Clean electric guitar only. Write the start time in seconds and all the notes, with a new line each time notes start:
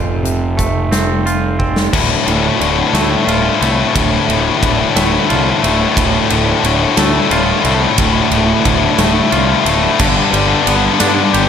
Already playing: F2 A3 C4 F4
0.24 C3
0.57 A3
0.92 C4
1.26 F4
1.59 C4
1.93 D2
2.27 A2
2.60 D3
2.94 A3
3.28 F4
3.61 A3
3.95 D2
4.28 A2
4.62 D3
4.96 A3
5.29 F4
5.63 A3
5.97 D2
6.31 A2
6.65 D3
6.99 A3
7.32 F4
7.65 A3
7.99 D2
8.32 A2
8.65 D3
8.99 A3
9.32 F4
9.66 A3
9.99 G2
10.33 G3
10.67 B3
11.00 D4
11.33 G4